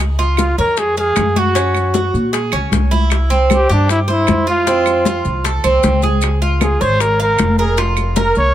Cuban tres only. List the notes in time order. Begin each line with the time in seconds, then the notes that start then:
0.19 F4
0.58 C#5
0.97 F5
1.36 F#4
1.55 C#4
1.94 F#4
2.33 G#4
2.53 C#4
2.91 E4
3.30 C4
3.69 G4
4.08 C5
4.47 F4
4.67 C4
5.06 F4
5.44 A4
5.64 C4
6.03 G#4
6.42 F4
6.81 C#5
7.20 F5
7.59 A#4
7.78 F4
8.16 A#4